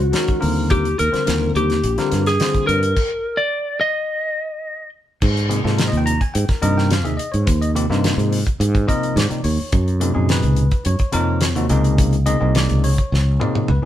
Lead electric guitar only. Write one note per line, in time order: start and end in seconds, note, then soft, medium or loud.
0.00 0.38 F#4 medium
0.71 0.99 G4 medium
0.99 1.51 A#4 medium
1.57 2.22 G4 medium
2.27 2.67 G#4 medium
2.67 3.40 A#4 medium
3.37 3.80 D5 medium
3.81 4.89 D#5 medium